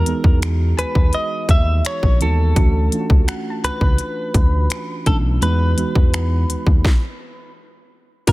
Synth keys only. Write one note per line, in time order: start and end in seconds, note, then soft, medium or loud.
0.00 0.06 E3 medium
0.00 0.07 G#3 medium
0.00 0.07 B3 medium
0.00 0.08 D#4 medium
0.00 2.22 F#4 medium
0.06 1.03 E3 medium
0.06 1.04 G#3 medium
0.06 1.04 B3 medium
0.06 1.04 D#4 medium
0.06 1.05 G#4 medium
2.20 2.45 E3 medium
2.20 2.45 G#3 medium
2.20 2.45 B3 medium
2.20 2.45 D#4 medium
2.20 2.46 F#4 medium
2.55 2.80 E3 medium
2.55 2.80 A3 medium
2.55 2.81 C#4 medium
2.55 2.81 D4 medium
2.55 2.81 F#4 medium
2.91 3.89 E3 medium
2.91 3.89 A3 medium
2.91 3.89 C#4 medium
2.91 3.90 D4 medium
2.91 2.99 F4 medium
3.00 3.93 F#4 medium
5.06 5.30 E3 medium
5.06 5.30 A3 medium
5.06 5.31 C#4 medium
5.06 5.31 D4 medium
5.06 5.31 E4 medium
5.41 5.66 E3 medium
5.41 5.66 G#3 medium
5.41 5.66 B3 medium
5.41 5.67 D#4 medium
5.41 5.67 F#4 medium
5.77 6.74 E3 medium
5.77 6.75 G#3 medium
5.77 6.75 B3 medium
5.77 6.75 D#4 medium
5.77 6.76 F#4 medium
8.27 8.32 F#3 medium
8.27 8.32 A#3 medium
8.27 8.32 C#4 medium
8.27 8.32 F4 medium
8.27 8.32 G4 medium